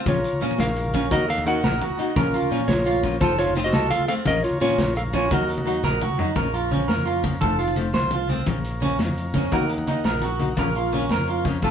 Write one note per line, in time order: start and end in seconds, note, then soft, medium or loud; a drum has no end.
0.00 1.09 F5 medium
0.05 0.23 A#1 medium
0.05 0.16 F3 medium
0.05 0.17 A#3 medium
0.05 0.17 C#4 medium
0.05 0.17 F4 medium
0.05 0.40 F4 medium
0.05 1.10 C#5 medium
0.05 0.40 C#5 medium
0.05 3.18 A#5 medium
0.05 kick medium
0.05 closed hi-hat medium
0.05 muted conga medium
0.05 high conga medium
0.05 low conga medium
0.24 closed hi-hat medium
0.33 low conga medium
0.40 0.58 A#2 medium
0.40 0.51 F3 medium
0.40 0.52 C#4 medium
0.40 0.57 C#4 medium
0.40 0.52 F4 medium
0.40 closed hi-hat soft
0.40 low conga soft
0.51 muted conga medium
0.58 1.08 A#1 loud
0.58 1.08 A#4 medium
0.58 1.12 F5 medium
0.58 snare medium
0.58 closed hi-hat medium
0.58 high conga medium
0.58 low conga medium
0.76 closed hi-hat soft
0.86 low conga medium
0.93 1.04 F3 medium
0.93 1.04 A#3 medium
0.93 1.09 C#4 medium
0.93 1.05 C#4 medium
0.93 1.05 F4 medium
0.93 kick medium
0.93 closed hi-hat soft
0.93 muted conga medium
1.03 low conga soft
1.11 1.61 D#2 medium
1.11 1.21 D#3 medium
1.11 1.22 A#3 medium
1.11 1.22 D#4 medium
1.11 1.27 F#4 medium
1.11 1.22 F#4 medium
1.11 1.27 A#4 medium
1.11 2.15 D#5 medium
1.11 1.30 D#5 medium
1.11 2.15 F#5 medium
1.11 kick medium
1.11 closed hi-hat medium
1.11 high conga medium
1.11 low conga medium
1.29 1.45 A4 medium
1.29 1.47 F5 loud
1.29 closed hi-hat soft
1.38 muted conga medium
1.38 low conga medium
1.45 1.56 D#3 medium
1.45 1.56 A#3 medium
1.45 1.62 D#4 medium
1.45 1.57 D#4 medium
1.45 1.57 F#4 medium
1.45 1.79 A#4 medium
1.45 1.79 F#5 loud
1.45 closed hi-hat soft
1.45 low conga soft
1.55 low conga soft
1.64 1.80 A#1 loud
1.64 1.79 A#4 medium
1.64 snare medium
1.64 closed hi-hat medium
1.64 high conga medium
1.64 low conga medium
1.81 1.97 F#4 medium
1.81 closed hi-hat soft
1.81 muted conga medium
1.90 low conga medium
1.98 2.09 D#3 medium
1.98 2.09 A#3 medium
1.98 2.14 D#4 medium
1.98 2.10 D#4 medium
1.98 2.10 F#4 medium
1.98 closed hi-hat soft
2.08 low conga soft
2.15 2.33 A#1 loud
2.15 2.26 F3 medium
2.15 2.26 A#3 medium
2.15 2.27 C#4 medium
2.15 2.49 C#4 medium
2.15 2.27 F4 medium
2.15 2.49 A#4 medium
2.15 2.32 A#4 medium
2.15 3.20 C#5 medium
2.15 5.29 F5 medium
2.15 kick medium
2.15 closed hi-hat medium
2.15 muted conga medium
2.15 high conga medium
2.15 low conga medium
2.34 2.49 F4 medium
2.34 closed hi-hat medium
2.42 low conga medium
2.49 2.68 A#2 medium
2.49 2.61 F3 medium
2.49 2.61 A#3 medium
2.49 2.62 C#4 medium
2.49 2.67 C#4 medium
2.49 2.62 F4 medium
2.49 closed hi-hat soft
2.49 low conga soft
2.60 muted conga medium
2.68 3.18 A#1 medium
2.68 3.18 F4 medium
2.68 3.17 C#5 medium
2.68 snare medium
2.68 closed hi-hat medium
2.68 high conga medium
2.68 low conga medium
2.86 3.01 F4 medium
2.86 closed hi-hat soft
2.94 low conga medium
3.03 3.14 F3 medium
3.03 3.14 A#3 medium
3.03 3.15 C#4 medium
3.03 3.15 F4 medium
3.03 kick medium
3.03 snare soft
3.03 closed hi-hat soft
3.03 muted conga medium
3.12 low conga soft
3.20 3.71 F1 medium
3.20 3.31 F3 medium
3.20 3.32 A3 medium
3.20 3.32 C4 medium
3.20 3.38 F4 medium
3.20 3.32 F4 medium
3.20 3.37 A4 medium
3.20 4.25 C5 medium
3.20 3.38 C5 medium
3.20 4.25 A5 medium
3.20 kick medium
3.20 closed hi-hat medium
3.20 high conga medium
3.20 low conga medium
3.38 3.54 F4 medium
3.38 3.55 F4 medium
3.38 3.57 C#5 medium
3.38 closed hi-hat medium
3.47 muted conga medium
3.47 low conga medium
3.55 3.66 F3 medium
3.55 3.66 A3 medium
3.55 3.67 C4 medium
3.55 3.72 C4 medium
3.55 3.61 D#4 medium
3.55 3.67 F4 medium
3.55 3.61 C5 medium
3.55 closed hi-hat medium
3.55 low conga soft
3.64 3.90 F#4 medium
3.64 3.89 D#5 medium
3.64 low conga soft
3.73 3.90 C2 loud
3.73 3.89 A4 medium
3.73 snare medium
3.73 closed hi-hat medium
3.73 high conga medium
3.73 low conga medium
3.90 4.07 F4 medium
3.90 4.07 A4 medium
3.90 4.07 F5 loud
3.90 closed hi-hat soft
3.90 muted conga medium
3.99 low conga medium
4.07 4.18 F3 medium
4.07 4.19 A3 medium
4.07 4.19 C4 medium
4.07 4.24 C4 medium
4.07 4.20 F4 medium
4.07 4.14 A4 medium
4.07 4.13 F5 loud
4.07 closed hi-hat medium
4.17 low conga soft
4.25 4.43 A#1 medium
4.25 4.36 F3 medium
4.25 4.37 A#3 soft
4.25 4.37 C#4 medium
4.25 4.37 F4 medium
4.25 4.43 A#4 medium
4.25 5.30 C#5 medium
4.25 4.43 D#5 loud
4.25 6.34 A#5 medium
4.25 kick medium
4.25 closed hi-hat medium
4.25 muted conga medium
4.25 high conga medium
4.25 low conga medium
4.43 4.60 F4 medium
4.43 4.60 C#5 medium
4.43 closed hi-hat soft
4.43 low conga soft
4.51 low conga medium
4.60 4.77 A#2 medium
4.60 4.71 F3 medium
4.60 4.72 A#3 medium
4.60 4.77 C#4 medium
4.60 4.72 C#4 medium
4.60 4.94 F4 medium
4.60 4.73 F4 medium
4.60 4.97 C#5 medium
4.60 closed hi-hat soft
4.69 muted conga medium
4.78 5.28 A#1 medium
4.78 snare medium
4.78 closed hi-hat medium
4.78 high conga medium
4.78 low conga medium
4.96 5.02 A4 medium
4.96 5.02 F5 medium
4.96 closed hi-hat soft
4.96 low conga soft
5.05 low conga medium
5.13 5.24 F3 medium
5.13 5.24 A#3 medium
5.13 5.29 C#4 medium
5.13 5.25 C#4 medium
5.13 5.25 F4 medium
5.13 5.31 F4 medium
5.13 5.32 C#5 medium
5.13 kick medium
5.13 snare soft
5.13 closed hi-hat soft
5.13 muted conga medium
5.30 5.81 D#2 medium
5.30 5.41 F#3 medium
5.30 5.42 A#3 medium
5.30 5.42 D#4 medium
5.30 5.98 F#4 medium
5.30 5.42 F#4 medium
5.30 5.47 A#4 medium
5.30 6.35 D#5 medium
5.30 6.02 D#5 medium
5.30 6.36 F#5 medium
5.30 kick medium
5.30 closed hi-hat medium
5.30 high conga medium
5.30 low conga medium
5.41 low conga soft
5.49 closed hi-hat soft
5.58 muted conga medium
5.58 low conga medium
5.65 5.76 F#3 medium
5.65 5.76 A#3 medium
5.65 5.77 D#4 medium
5.65 5.82 D#4 medium
5.65 5.77 F#4 medium
5.65 closed hi-hat medium
5.83 6.00 A#1 medium
5.83 6.00 A#4 medium
5.83 snare soft
5.83 high conga medium
5.83 low conga medium
6.01 6.17 F#4 medium
6.01 mid tom medium
6.01 muted conga medium
6.10 low conga medium
6.18 6.29 F#3 medium
6.18 6.29 A#3 medium
6.18 6.35 D#4 medium
6.18 6.30 D#4 medium
6.18 6.30 F#4 medium
6.18 floor tom medium
6.28 low conga soft
6.36 6.86 A#1 medium
6.36 6.46 F3 medium
6.36 6.47 A#3 medium
6.36 6.47 C#4 medium
6.36 6.52 A#4 medium
6.36 7.41 C#5 medium
6.36 7.40 F5 soft
6.36 7.40 A#5 medium
6.36 kick medium
6.36 closed hi-hat medium
6.36 muted conga medium
6.36 high conga medium
6.45 low conga medium
6.54 6.69 F4 medium
6.54 closed hi-hat soft
6.71 6.82 F3 medium
6.71 6.82 A#3 medium
6.71 6.87 C#4 medium
6.71 6.83 C#4 medium
6.71 closed hi-hat soft
6.71 low conga medium
6.80 muted conga medium
6.88 7.39 F2 medium
6.88 7.04 A#4 medium
6.88 snare medium
6.88 closed hi-hat medium
6.88 high conga medium
6.97 low conga medium
7.06 7.22 F4 medium
7.06 closed hi-hat soft
7.23 7.34 F3 medium
7.23 7.35 A#3 medium
7.23 7.35 C#4 medium
7.23 kick medium
7.23 closed hi-hat soft
7.23 muted conga medium
7.23 low conga medium
7.40 7.91 F1 loud
7.40 7.52 F3 medium
7.40 7.52 A3 medium
7.40 7.52 C4 medium
7.40 7.57 A4 medium
7.40 8.45 C5 medium
7.40 9.50 F5 medium
7.40 8.45 A5 medium
7.40 kick medium
7.40 closed hi-hat medium
7.40 high conga medium
7.49 low conga medium
7.59 7.74 F4 medium
7.59 closed hi-hat soft
7.68 muted conga medium
7.68 low conga soft
7.75 7.87 F3 medium
7.75 7.87 A3 medium
7.75 7.88 C4 medium
7.75 closed hi-hat soft
7.75 low conga medium
7.94 8.44 C2 medium
7.94 8.10 C5 medium
7.94 snare medium
7.94 closed hi-hat medium
7.94 high conga medium
8.02 low conga medium
8.11 8.28 F4 medium
8.11 closed hi-hat soft
8.11 muted conga medium
8.28 8.39 F3 medium
8.28 8.40 A3 medium
8.28 8.45 C4 medium
8.28 8.40 C4 medium
8.28 closed hi-hat soft
8.28 low conga medium
8.46 8.97 A#1 medium
8.46 8.57 F3 medium
8.46 8.58 A#3 medium
8.46 8.58 C#4 medium
8.46 9.51 C#5 medium
8.46 9.51 A#5 medium
8.46 kick medium
8.46 closed hi-hat medium
8.46 muted conga medium
8.46 high conga medium
8.55 low conga medium
8.65 closed hi-hat medium
8.80 8.92 F3 medium
8.80 8.92 A#3 medium
8.80 8.98 C#4 medium
8.80 8.93 C#4 medium
8.80 closed hi-hat soft
8.80 low conga medium
8.90 muted conga medium
8.99 9.49 F2 medium
8.99 snare medium
8.99 closed hi-hat medium
8.99 high conga medium
9.08 low conga medium
9.17 closed hi-hat soft
9.34 9.45 F3 medium
9.34 9.45 A#3 medium
9.34 9.50 C#4 medium
9.34 kick soft
9.34 snare soft
9.34 closed hi-hat soft
9.34 muted conga medium
9.34 low conga medium
9.51 10.02 D#2 loud
9.51 9.62 A#3 medium
9.51 9.63 D#4 medium
9.51 9.63 F#4 medium
9.51 11.61 A#4 medium
9.51 9.68 A#4 medium
9.51 10.57 D#5 medium
9.51 10.57 F#5 medium
9.51 kick medium
9.51 closed hi-hat medium
9.51 high conga medium
9.60 low conga medium
9.69 closed hi-hat soft
9.78 muted conga medium
9.78 low conga soft
9.87 9.98 A#3 medium
9.87 10.03 D#4 medium
9.87 9.98 D#4 medium
9.87 muted nylon-string guitar stroke medium
9.87 closed hi-hat medium
9.87 low conga medium
10.04 10.55 A#1 medium
10.04 10.21 A#4 medium
10.04 snare medium
10.04 closed hi-hat medium
10.04 high conga medium
10.13 low conga medium
10.22 10.39 F#4 medium
10.22 closed hi-hat soft
10.22 muted conga medium
10.39 10.50 A#3 medium
10.39 10.51 D#4 medium
10.39 10.51 F#4 medium
10.39 closed hi-hat soft
10.39 low conga medium
10.56 11.07 A#1 medium
10.56 10.68 F3 medium
10.56 10.68 A#3 medium
10.56 10.68 C#4 medium
10.56 10.68 F4 medium
10.56 10.74 A#4 medium
10.56 11.61 C#5 medium
10.56 11.71 F5 medium
10.56 kick medium
10.56 closed hi-hat medium
10.56 muted conga medium
10.56 high conga medium
10.66 low conga medium
10.75 10.91 F4 medium
10.75 closed hi-hat soft
10.92 11.03 F3 medium
10.92 11.03 A#3 medium
10.92 11.04 C#4 medium
10.92 11.09 C#4 medium
10.92 11.04 F4 medium
10.92 closed hi-hat soft
10.92 low conga medium
11.02 muted conga medium
11.09 11.60 F2 medium
11.09 11.27 A#4 medium
11.09 snare medium
11.09 closed hi-hat medium
11.09 high conga medium
11.18 low conga medium
11.28 11.44 F4 medium
11.28 closed hi-hat soft
11.45 11.55 F3 medium
11.45 11.56 A#3 medium
11.45 11.56 C#4 medium
11.45 muted nylon-string guitar stroke medium
11.45 kick medium
11.45 snare soft
11.45 closed hi-hat soft
11.45 muted conga medium
11.45 low conga medium
11.62 11.71 F1 loud
11.62 11.71 F3 medium
11.62 11.71 A3 medium
11.62 11.71 C4 medium
11.62 11.71 F4 medium
11.62 11.71 A4 medium
11.62 11.71 C5 medium
11.62 kick medium
11.62 closed hi-hat medium
11.62 high conga medium